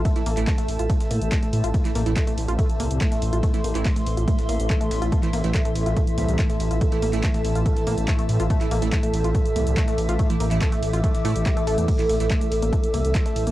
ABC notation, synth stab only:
X:1
M:4/4
L:1/16
Q:1/4=142
K:Am
V:1 name="Synth stab"
z [E,A,E] z [E,A,E] z12 | z [E,A,E] z [E,A,E] z12 | z [E,A,E] z [E,A,E] z12 | z [E,A,E] z [E,A,E] z12 |
z [E,A,E] z [E,A,E] z12 | z [E,A,E] z [E,A,E] z12 | z [E,A,E] z [E,A,E] z6 [E,A,E] z4 z | z [E,A,E] z [E,A,E] z12 |]